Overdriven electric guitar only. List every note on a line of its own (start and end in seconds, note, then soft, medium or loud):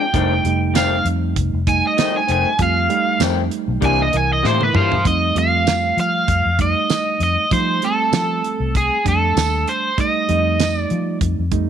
0.00 0.74 G5 loud
0.77 1.06 F5 loud
1.69 1.85 G#5 medium
1.87 2.15 D#5 medium
2.17 2.30 G#5 medium
2.32 2.60 G#5 loud
2.63 3.21 F5 loud
3.85 4.00 G#5 loud
4.02 4.14 D#5 medium
4.17 4.31 G#5 medium
4.33 4.47 D#5 loud
4.46 4.62 C5 loud
4.64 4.76 B4 loud
4.76 5.05 C5 loud
4.76 5.07 F5 medium
5.07 5.38 D#5 loud
5.38 5.99 F5 loud
6.00 6.61 F5 loud
6.62 7.22 D#5 medium
7.23 7.53 D#5 medium
7.53 7.84 C5 loud
7.85 8.77 A4 medium
8.77 9.07 G#4 medium
9.08 9.70 A4 medium
9.69 10.00 C5 medium
10.01 10.78 D#5 medium
10.78 11.18 D5 medium